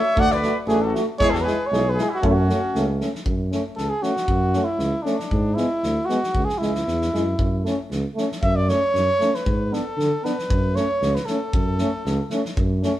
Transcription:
Already playing: C#5 E5
0.16 D2 A3 F#4, kick
0.20 D5 F#5
0.30 B4 D5, snare
0.42 A3 F#4, snare
0.67 A1 A3 D4 F#4 G#4, snare
0.81 F#4 A4
0.94 A3 F#4, snare
1.19 E2 G#3 E4 G#4 C#5, kick
1.31 A4, snare
1.35 F#4
1.42 G#3 G#4 B4
1.47 E4, snare
1.67 C#5
1.71 B1 G#3 E4 G#4, snare
1.90 G#4 B4
1.97 G#3 E4, snare
2.03 G#4
2.09 E4
2.14 F#4
2.21 F#2 A3 C#4, kick
2.26 C#4 E4
2.32 C#4 F#4
2.49 A3 C#4, snare
2.75 C#2 A3 C#4, snare
3.00 A3 C#4, snare
3.15 snare
3.25 F#2, kick
3.52 A3 C#4, snare
3.76 C#2 A4, snare
3.90 G#4
4.03 A3 C#4 F#4, snare
4.17 snare
4.28 F#2, kick
4.53 A3 C#4, snare
4.65 E4
4.78 C#2, snare
5.02 A3 C#4 D4, snare
5.20 snare
5.31 G#2, kick
5.55 G#3 B3 E4, snare
5.83 D2, snare
6.05 G#3 B3 F#4, snare
6.23 snare
6.35 C#2, kick
6.45 G#4
6.49 snare
6.58 C#2 G#3 E4, snare
6.62 E4
6.75 snare
6.87 E2, snare
7.01 snare
7.13 F#2 G#3 E4, snare
7.38 F#2, kick
7.64 A3 C#4, snare
7.90 C#2, snare
8.15 A3, snare
8.19 C#4
8.32 snare
8.42 F#2 E5, kick
8.56 D5
8.68 A3 C#5, snare
8.72 C#4
8.94 F#2, snare
9.20 A3 C#4, snare
9.34 B4, snare
9.46 G#2, kick
9.71 B3 D4 A4, snare
9.97 D3, snare
10.23 B3 D4 B4, snare
10.39 snare
10.49 F#2, kick
10.74 A3 C#4 C#5, snare
11.01 C#2, snare
11.15 B4, snare
11.25 A3 C#4 A4, snare
11.53 F#2, kick
11.78 A3 C#4, snare
12.05 C#2, snare
12.30 A3 C#4, snare
12.45 snare
12.57 F#2, kick
12.83 A3 C#4, snare

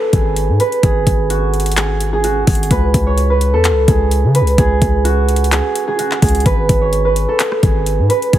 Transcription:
Already playing: F#4 A4 B4 C#5
0.13 G#1 G#4, kick, closed hi-hat
0.36 closed hi-hat
0.49 G#2
0.60 B4, closed hi-hat
0.72 closed hi-hat
0.83 G#1 G#4, kick, closed hi-hat
1.07 G#1, kick, closed hi-hat
1.30 F#4, closed hi-hat
1.54 closed hi-hat
1.60 closed hi-hat
1.66 closed hi-hat
1.72 closed hi-hat
1.77 G#4, clap, closed hi-hat
2.00 closed hi-hat
2.13 G#4
2.24 F#4, closed hi-hat
2.47 G#1 G#4, kick, closed hi-hat, open hi-hat
2.55 closed hi-hat
2.63 closed hi-hat
2.71 C#2 B4, kick, closed hi-hat
2.94 C#2, kick, closed hi-hat
3.07 C#5
3.18 closed hi-hat
3.30 B4
3.41 closed hi-hat
3.53 E2 A4
3.65 clap, closed hi-hat
3.71 C#2
3.88 C#2 G#4, kick, closed hi-hat
4.11 closed hi-hat
4.24 C#3
4.35 B4, closed hi-hat
4.41 C#2
4.47 closed hi-hat
4.58 C#2 G#4, kick, closed hi-hat
4.82 C#2, kick, closed hi-hat
5.05 F#4, closed hi-hat
5.29 closed hi-hat
5.36 closed hi-hat
5.44 closed hi-hat
5.52 G#4, clap, closed hi-hat
5.75 closed hi-hat
5.88 G#4
5.99 F#4, closed hi-hat
6.11 clap
6.22 C#2 G#4, kick, closed hi-hat, open hi-hat
6.29 closed hi-hat
6.35 closed hi-hat
6.40 closed hi-hat
6.46 G#1 B4, kick, closed hi-hat
6.69 G#1, kick, closed hi-hat
6.81 C#5
6.93 closed hi-hat
7.05 B4
7.16 closed hi-hat
7.29 A4
7.40 clap, closed hi-hat
7.52 cross-stick
7.63 G#1 G#4, kick, closed hi-hat
7.86 closed hi-hat
7.99 G#2
8.10 B4, closed hi-hat
8.22 closed hi-hat
8.33 G#1 G#4, kick, closed hi-hat

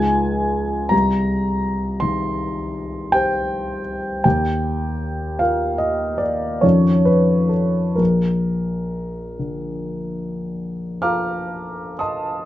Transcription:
Already playing: C#2 G#3 D#4 F4 G#4 G#5
0.89 C2 A#5
2.00 D#3 C6
3.12 G4 C5 G5
4.24 D#2 G5
5.39 F4 A#4 F5
5.78 D#5
6.18 D5
6.61 F2 D#3 C#4 F4 A4 C#5
7.05 B4
7.49 A4
7.95 A#1 A#4
9.39 D3
11.02 F4 A4 F5 A#5 D6 F6
11.99 D#5 A5 C6 D#6

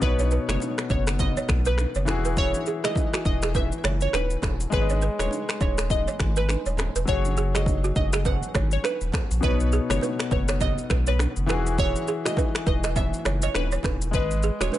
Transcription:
0.00 B1 B2 B3 D#4 B4, kick, low conga, shaker
0.04 C#5
0.19 C#5, high bongo, shaker
0.31 B4, shaker
0.48 F#1 C#5, finger snap, cross-stick, low bongo, shaker
0.60 high bongo, shaker
0.78 finger snap, cross-stick, shaker
0.90 F#1 C#5, kick, high bongo, shaker
1.07 finger snap, cross-stick, shaker
1.19 D#5, kick, low conga, shaker
1.37 C#5, shaker
1.49 B1, finger snap, kick, cross-stick, low bongo, shaker
1.65 B4, shaker
1.78 finger snap, cross-stick, high bongo, shaker
1.95 F#1 C#5, shaker
2.05 E1 E3 E4 F#4, finger snap, cross-stick, low conga, shaker
2.10 G#4
2.25 B4, shaker
2.37 C#5, kick, low conga, shaker
2.54 high bongo, shaker
2.66 G#4, shaker
2.84 G#4 D#5, finger snap, cross-stick, low bongo, shaker
2.95 kick, high bongo, shaker
3.13 F#4, finger snap, cross-stick, shaker
3.25 E1 D#5, kick, high bongo, shaker
3.42 G#4, finger snap, cross-stick, shaker
3.55 B4 E5, kick, low conga, shaker
3.72 shaker
3.84 F#1 C#5, finger snap, cross-stick, low bongo, shaker
4.01 C#5, shaker
4.13 D#1 B4, finger snap, cross-stick, high bongo, shaker
4.30 shaker
4.42 E1, finger snap, kick, cross-stick, low conga, shaker
4.60 shaker
4.70 G#1 G#3 G#4 B4, kick, low conga, shaker
4.75 C#5
4.82 D#5
4.89 C#5, high bongo, shaker
5.01 B4, shaker
5.19 D#1 C#5, finger snap, cross-stick, low bongo, shaker
5.31 high bongo, shaker
5.49 finger snap, cross-stick, shaker
5.60 D#1 C#5, kick, high bongo, shaker
5.78 finger snap, cross-stick, shaker
5.90 D#5, kick, low conga, shaker
6.08 C#5, shaker
6.20 G#1, finger snap, kick, cross-stick, low bongo, shaker
6.36 B4, shaker
6.49 finger snap, cross-stick, high bongo, shaker
6.66 D#1 C#5, shaker
6.77 finger snap, cross-stick, low conga, shaker
6.95 E1 B4, shaker
7.05 F#1 F#3 F#4 G#4 C#5, kick, low conga, shaker
7.10 C#5
7.25 high bongo, shaker
7.37 G#4, shaker
7.55 G#4 D#5, finger snap, cross-stick, low bongo, shaker
7.66 kick, high bongo, shaker
7.84 F#4, shaker
7.96 F#1 D#5, kick, high bongo, low bongo, shaker
8.13 G#4, finger snap, cross-stick, shaker
8.25 B4 F#5, kick, low conga, shaker
8.43 shaker
8.55 G#1 C#5, finger snap, kick, cross-stick, low bongo, shaker
8.71 C#5, shaker
8.84 B4, finger snap, cross-stick, high bongo, shaker
9.01 D#1, shaker
9.12 finger snap, kick, cross-stick, low conga, shaker
9.31 A#1, shaker
9.41 B1 B2 B3 D#4 B4, kick, low conga, shaker
9.46 C#5
9.60 shaker
9.72 G#4, shaker
9.90 F#1 F#4 C#5, finger snap, cross-stick, low bongo, shaker
10.01 B4, high bongo, shaker
10.19 finger snap, cross-stick, shaker
10.31 F#1 B4 C#5, kick, low bongo, shaker
10.48 C#5, finger snap, cross-stick, shaker
10.61 D#5, kick, low conga, shaker
10.78 shaker
10.90 B1 B4, finger snap, kick, cross-stick, low bongo, shaker
11.07 B4 C#5, shaker
11.19 finger snap, cross-stick, high bongo, shaker
11.36 F#1, shaker
11.46 E1 E3 E4 F#4 B4, finger snap, cross-stick, low conga, shaker
11.51 G#4
11.66 shaker
11.78 C#5, kick, low conga, shaker
11.96 shaker
12.07 G#4, shaker
12.25 F#4 D#5, finger snap, cross-stick, low bongo, shaker
12.36 B4, kick, high bongo, shaker
12.55 finger snap, cross-stick, shaker
12.66 E1 B4 D#5, kick, low bongo, shaker
12.84 D#5, finger snap, cross-stick, shaker
12.96 E5, kick, low conga, shaker
13.14 shaker
13.25 F#1 C#5, finger snap, cross-stick, low bongo, shaker
13.42 C#5 D#5, shaker
13.55 D#1 B4, finger snap, cross-stick, high bongo, shaker
13.71 C#5, shaker
13.83 E1 B4, finger snap, kick, cross-stick, low conga, shaker
14.02 shaker
14.11 G#1 G#3 G#4 B4, kick, low conga, shaker
14.16 D#5
14.31 shaker
14.43 G#4, shaker
14.60 D#1 F#4 C#5, finger snap, cross-stick, low bongo, shaker
14.72 B4, high bongo, shaker

